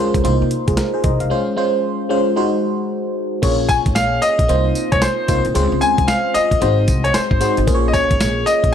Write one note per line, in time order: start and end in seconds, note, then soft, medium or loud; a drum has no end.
0.00 0.26 G#3 medium
0.00 0.27 C#4 medium
0.00 0.24 F4 medium
0.00 0.26 A#4 medium
0.00 0.24 C5 medium
0.14 0.22 C#2 medium
0.14 kick medium
0.14 closed hi-hat medium
0.24 0.38 C2 loud
0.24 1.16 A#3 medium
0.24 1.17 D#4 medium
0.24 0.51 F4 medium
0.24 0.51 C5 medium
0.24 closed hi-hat medium
0.42 0.49 C3 medium
0.51 closed hi-hat medium
0.67 0.76 C2 medium
0.67 0.77 F4 medium
0.67 0.77 G#4 medium
0.67 kick medium
0.67 closed hi-hat medium
0.77 0.93 A#4 medium
0.77 snare loud
0.77 closed hi-hat medium
0.94 1.04 G#4 medium
0.94 1.03 C5 medium
1.04 1.17 C2 loud
1.04 1.20 C5 medium
1.04 1.20 D#5 medium
1.04 kick loud
1.04 closed hi-hat medium
1.20 1.29 C2 medium
1.20 1.46 F5 medium
1.20 closed hi-hat medium
1.30 1.54 G#3 medium
1.30 1.54 C#4 medium
1.30 1.54 F4 medium
1.30 1.54 C5 medium
1.56 2.04 G#3 medium
1.56 2.04 C#4 medium
1.56 2.04 F4 medium
1.56 2.04 C5 loud
2.09 2.35 G#3 medium
2.09 2.37 C#4 medium
2.09 2.37 F4 medium
2.09 2.36 C5 medium
2.36 3.29 G#3 medium
2.36 3.29 D#4 medium
2.36 3.29 F#4 medium
2.36 3.29 C5 medium
3.42 3.77 A#1 loud
3.42 4.35 A#3 medium
3.42 4.35 C#4 medium
3.42 4.35 F4 medium
3.42 4.35 G#4 medium
3.42 4.36 C#5 loud
3.42 kick loud
3.42 closed hi-hat medium
3.42 crash medium
3.42 tambourine medium
3.69 3.75 G#5 loud
3.69 kick medium
3.69 closed hi-hat medium
3.69 tambourine medium
3.86 3.96 G#1 medium
3.86 kick medium
3.86 closed hi-hat medium
3.95 4.17 A#1 medium
3.95 4.20 F5 loud
3.95 snare loud
3.95 closed hi-hat medium
3.95 tambourine medium
4.22 4.94 D#5 loud
4.22 closed hi-hat medium
4.22 tambourine medium
4.39 4.47 A#1 medium
4.39 kick medium
4.39 closed hi-hat medium
4.48 4.70 C2 loud
4.48 5.19 A#3 medium
4.48 5.19 C4 medium
4.48 5.20 D#4 medium
4.48 5.20 F4 medium
4.48 5.20 C5 medium
4.48 closed hi-hat medium
4.75 closed hi-hat medium
4.75 tambourine medium
4.92 5.00 C2 loud
4.92 5.02 C#5 medium
4.92 kick loud
4.92 closed hi-hat medium
5.02 5.42 C5 medium
5.02 snare loud
5.02 closed hi-hat medium
5.02 tambourine loud
5.28 5.42 C2 medium
5.28 5.52 A#3 medium
5.28 5.52 C4 medium
5.28 5.52 D#4 medium
5.28 5.52 F4 medium
5.28 5.53 C5 medium
5.28 kick loud
5.28 closed hi-hat medium
5.28 tambourine medium
5.45 5.53 C2 loud
5.45 closed hi-hat soft
5.54 5.69 C#2 loud
5.54 6.47 G#3 medium
5.54 6.47 C4 medium
5.54 6.48 C#4 medium
5.54 6.48 F4 medium
5.54 6.48 C5 loud
5.54 closed hi-hat medium
5.54 tambourine medium
5.72 5.80 C#2 loud
5.81 6.09 G#5 loud
5.81 closed hi-hat medium
5.81 tambourine medium
5.98 6.06 C2 medium
5.98 kick loud
5.98 closed hi-hat medium
6.08 6.35 F5 medium
6.08 snare loud
6.08 closed hi-hat medium
6.08 tambourine medium
6.34 7.06 D#5 loud
6.34 muted upright bass stroke soft
6.34 closed hi-hat medium
6.34 tambourine medium
6.51 6.59 A#1 medium
6.51 kick medium
6.51 closed hi-hat medium
6.61 6.83 G#1 loud
6.61 7.32 G#3 medium
6.61 7.32 C4 medium
6.61 7.32 D#4 medium
6.61 7.32 F#4 medium
6.61 7.32 C5 medium
6.61 closed hi-hat medium
6.88 7.09 C2 loud
6.88 kick loud
6.88 closed hi-hat medium
6.88 tambourine medium
7.04 7.15 C#5 medium
7.04 closed hi-hat medium
7.14 7.54 C5 medium
7.14 muted upright bass stroke medium
7.14 snare loud
7.14 closed hi-hat medium
7.14 tambourine medium
7.31 7.39 G#1 loud
7.31 kick loud
7.40 7.64 G#3 medium
7.40 7.64 C4 medium
7.40 7.65 D#4 medium
7.40 7.65 F#4 medium
7.40 7.65 C5 medium
7.40 closed hi-hat medium
7.40 tambourine medium
7.57 7.68 G#1 loud
7.57 closed hi-hat soft
7.67 8.02 A#1 loud
7.67 8.60 A#3 medium
7.67 8.60 C#4 medium
7.67 8.60 F4 medium
7.67 8.60 G#4 medium
7.67 7.76 C5 medium
7.67 kick loud
7.67 closed hi-hat medium
7.67 tambourine medium
7.75 8.64 C#5 loud
7.88 7.94 D#5 medium
7.93 8.43 C#5 medium
7.93 kick medium
7.93 closed hi-hat medium
7.93 tambourine medium
8.11 8.19 G#1 medium
8.11 kick medium
8.11 closed hi-hat medium
8.20 8.42 A#1 medium
8.20 snare loud
8.20 closed hi-hat medium
8.20 tambourine medium
8.46 8.74 D#5 medium
8.46 closed hi-hat medium
8.46 tambourine medium
8.64 8.72 A#1 medium
8.64 kick medium
8.64 closed hi-hat medium